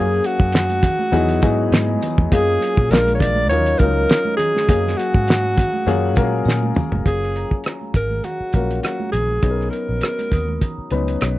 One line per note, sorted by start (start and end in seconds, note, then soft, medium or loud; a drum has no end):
0.00 0.19 F#2 loud
0.00 0.84 F#3 medium
0.00 0.85 A#3 medium
0.00 0.85 C#4 medium
0.00 0.28 G#4 medium
0.00 0.88 G#4 medium
0.00 0.85 F5 medium
0.24 2.03 F#4 loud
0.24 closed hi-hat medium
0.24 tambourine soft
0.24 muted conga soft
0.40 0.90 F#2 medium
0.40 kick medium
0.53 snare loud
0.53 closed hi-hat medium
0.53 tambourine medium
0.70 closed hi-hat medium
0.70 high conga medium
0.83 kick loud
0.83 closed hi-hat medium
0.83 tambourine soft
0.83 muted conga soft
0.83 low conga medium
0.99 high conga medium
1.12 1.43 E2 loud
1.12 1.37 F#3 medium
1.12 1.37 B3 medium
1.12 1.37 D#4 medium
1.12 1.37 E4 medium
1.12 1.37 G#4 loud
1.12 1.41 D#5 medium
1.12 closed hi-hat medium
1.12 tambourine soft
1.12 muted conga soft
1.12 low conga medium
1.29 closed hi-hat soft
1.42 1.68 G#2 medium
1.42 2.11 F#3 medium
1.42 2.11 B3 medium
1.42 2.11 D#4 medium
1.42 2.11 E4 medium
1.42 2.11 G#4 loud
1.42 2.57 D#5 medium
1.42 kick loud
1.42 closed hi-hat medium
1.42 tambourine medium
1.42 high conga soft
1.72 1.97 G#2 medium
1.72 snare loud
1.72 closed hi-hat medium
1.72 tambourine medium
1.88 high conga medium
2.01 closed hi-hat medium
2.01 tambourine medium
2.01 muted conga soft
2.01 low conga medium
2.18 2.29 E2 medium
2.18 kick medium
2.18 high conga medium
2.31 2.57 F#2 loud
2.31 2.91 F#3 medium
2.31 2.90 A#3 medium
2.31 2.91 C#4 medium
2.31 2.90 F4 medium
2.31 2.93 G#4 loud
2.31 2.92 G#4 medium
2.31 kick loud
2.31 closed hi-hat medium
2.31 tambourine soft
2.61 closed hi-hat medium
2.61 tambourine soft
2.61 muted conga soft
2.77 2.92 A#2 medium
2.77 kick medium
2.90 3.50 A#1 loud
2.90 3.39 G#3 medium
2.90 3.40 A#3 medium
2.90 3.40 D4 medium
2.90 3.40 F4 medium
2.90 3.14 A#4 loud
2.90 3.40 A#4 medium
2.90 snare loud
2.90 closed hi-hat medium
2.90 tambourine medium
2.90 muted conga soft
3.06 closed hi-hat medium
3.06 high conga medium
3.15 3.22 C#5 medium
3.19 3.49 D5 loud
3.19 kick loud
3.19 closed hi-hat medium
3.19 tambourine soft
3.19 muted conga soft
3.19 low conga medium
3.36 high conga medium
3.49 3.75 D#2 loud
3.49 3.74 F#3 medium
3.49 3.74 C#4 medium
3.49 3.75 D#4 medium
3.49 3.75 F4 medium
3.49 3.75 A#4 medium
3.49 3.80 C#5 loud
3.49 closed hi-hat medium
3.49 tambourine soft
3.49 muted conga soft
3.49 low conga medium
3.66 closed hi-hat medium
3.79 4.05 C#2 medium
3.79 4.48 F#3 medium
3.79 4.48 C#4 medium
3.79 4.48 D#4 medium
3.79 4.49 F4 medium
3.79 4.36 A#4 loud
3.79 4.49 A#4 medium
3.79 kick loud
3.79 closed hi-hat medium
3.79 tambourine medium
3.79 muted conga soft
3.79 high conga medium
4.09 snare loud
4.09 closed hi-hat medium
4.09 tambourine medium
4.09 muted conga soft
4.25 high conga medium
4.37 4.99 G#4 loud
4.37 closed hi-hat medium
4.37 tambourine medium
4.37 muted conga soft
4.37 low conga medium
4.55 snare soft
4.55 high conga medium
4.68 4.94 F#2 medium
4.68 5.59 F#3 medium
4.68 5.59 A#3 medium
4.68 5.59 C#4 medium
4.68 5.59 G#4 medium
4.68 5.59 F5 medium
4.68 kick loud
4.68 closed hi-hat medium
4.68 muted conga soft
4.88 snare soft
4.97 6.76 F#4 loud
4.97 closed hi-hat medium
4.97 muted conga soft
5.14 5.64 G#2 medium
5.14 kick medium
5.27 snare loud
5.27 closed hi-hat medium
5.27 tambourine medium
5.27 muted conga soft
5.43 high conga medium
5.57 kick loud
5.57 closed hi-hat medium
5.57 tambourine soft
5.57 muted conga soft
5.57 low conga medium
5.73 high conga medium
5.86 6.17 F#2 loud
5.86 6.11 F#3 medium
5.86 6.11 A#3 medium
5.86 6.11 C#4 medium
5.86 6.11 F4 medium
5.86 6.12 G#4 loud
5.86 closed hi-hat medium
5.86 tambourine soft
5.86 low conga medium
6.15 6.42 A#2 medium
6.15 6.85 F#3 medium
6.15 6.85 A#3 medium
6.15 6.85 C#4 medium
6.15 6.85 A#4 loud
6.15 6.85 F5 medium
6.15 kick loud
6.15 closed hi-hat medium
6.15 tambourine medium
6.15 muted conga soft
6.15 high conga soft
6.45 6.71 A#2 medium
6.45 snare medium
6.45 tambourine medium
6.63 high conga medium
6.75 mid tom medium
6.75 tambourine soft
6.75 low conga medium
6.92 7.03 F1 medium
6.92 floor tom medium
6.92 high conga medium
7.05 7.44 F#1 medium
7.05 7.96 F#3 medium
7.05 7.96 A#3 medium
7.05 7.96 C#4 medium
7.05 7.96 F4 medium
7.05 7.96 G#4 medium
7.05 7.62 G#4 medium
7.05 kick medium
7.05 closed hi-hat medium
7.05 muted conga soft
7.24 cross-stick soft
7.36 9.03 A#5 medium
7.36 closed hi-hat medium
7.51 muted fingered electric bass stroke soft
7.51 kick medium
7.64 cross-stick medium
7.64 closed hi-hat medium
7.64 muted conga soft
7.81 high conga soft
7.94 8.19 G#1 medium
7.94 8.26 A#4 medium
7.94 kick medium
7.94 closed hi-hat medium
7.94 muted conga soft
7.94 low conga medium
8.11 high conga medium
8.24 8.82 F#4 medium
8.24 closed hi-hat medium
8.24 muted conga soft
8.24 low conga medium
8.40 muted fingered electric bass stroke soft
8.53 8.79 A#1 medium
8.53 9.22 F#3 medium
8.53 9.23 A#3 medium
8.53 9.23 C#4 soft
8.53 9.23 F4 medium
8.53 9.23 A#4 medium
8.53 kick medium
8.53 closed hi-hat soft
8.53 muted conga soft
8.53 high conga soft
8.71 closed hi-hat soft
8.83 9.11 F#4 medium
8.83 cross-stick medium
8.83 closed hi-hat medium
9.00 high conga medium
9.12 9.38 A#1 medium
9.12 9.68 G#4 medium
9.12 closed hi-hat medium
9.12 low conga medium
9.30 high conga medium
9.42 9.68 B1 medium
9.42 10.33 F#3 medium
9.42 10.34 B3 medium
9.42 10.34 C#4 medium
9.42 10.34 D#4 medium
9.42 9.51 G#4 soft
9.42 kick medium
9.42 closed hi-hat medium
9.50 10.37 A#4 medium
9.61 cross-stick soft
9.70 10.86 A#4 medium
9.70 closed hi-hat medium
9.70 muted conga soft
9.89 10.00 A#1 medium
10.01 cross-stick medium
10.01 closed hi-hat medium
10.01 muted conga soft
10.19 closed hi-hat soft
10.19 high conga soft
10.31 10.57 D#2 medium
10.31 11.39 D#6 medium
10.31 kick medium
10.31 closed hi-hat medium
10.31 low conga medium
10.48 high conga medium
10.61 11.39 A#5 soft
10.61 kick medium
10.61 closed hi-hat medium
10.61 muted conga soft
10.61 low conga medium
10.78 muted fingered electric bass stroke soft
10.91 11.17 C#2 medium
10.91 11.39 F#3 medium
10.91 11.39 B3 medium
10.91 11.39 C#4 medium
10.91 11.39 D#4 medium
10.91 11.39 B4 medium
10.91 closed hi-hat medium
10.91 muted conga soft
10.91 high conga soft
11.08 closed hi-hat medium
11.21 11.39 B1 medium
11.21 cross-stick medium
11.21 closed hi-hat medium